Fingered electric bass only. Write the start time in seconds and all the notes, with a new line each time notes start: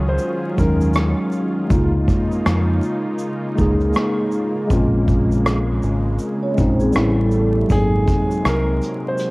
Already playing: C#2
0.58 D#2
1.70 C#2
2.46 F2
3.59 C#2
4.70 A#1
5.84 G#1
6.58 A#1
6.96 A1
7.70 G#1
8.45 C2